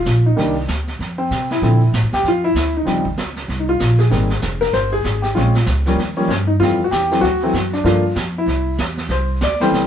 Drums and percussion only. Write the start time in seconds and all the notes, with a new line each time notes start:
0.06 snare, hi-hat pedal
0.38 brush sweep, snare
0.68 snare, hi-hat pedal
0.87 snare
1.00 brush sweep, snare
1.31 snare, hi-hat pedal
1.51 snare
1.62 brush sweep, snare
1.93 snare, hi-hat pedal
2.13 snare
2.24 brush sweep, snare
2.55 snare, hi-hat pedal
2.86 brush sweep, snare
3.05 kick
3.17 snare, hi-hat pedal
3.36 snare
3.49 brush sweep, snare
3.80 snare, hi-hat pedal
3.99 snare
4.11 brush sweep, snare
4.30 snare
4.42 snare, hi-hat pedal
4.61 snare
4.73 brush sweep, snare
5.04 snare, hi-hat pedal
5.23 snare
5.37 brush sweep, snare
5.55 snare
5.66 snare, hi-hat pedal
5.86 snare
5.99 brush sweep, snare
6.30 snare, hi-hat pedal
6.62 brush sweep, snare
6.92 snare, hi-hat pedal
7.11 snare
7.23 brush sweep, snare
7.54 snare, hi-hat pedal
7.73 snare
7.85 brush sweep, snare
8.16 snare, hi-hat pedal
8.48 brush sweep, snare
8.78 snare, hi-hat pedal
8.98 snare
9.09 brush sweep, snare
9.41 snare, hi-hat pedal
9.60 snare
9.73 brush sweep, snare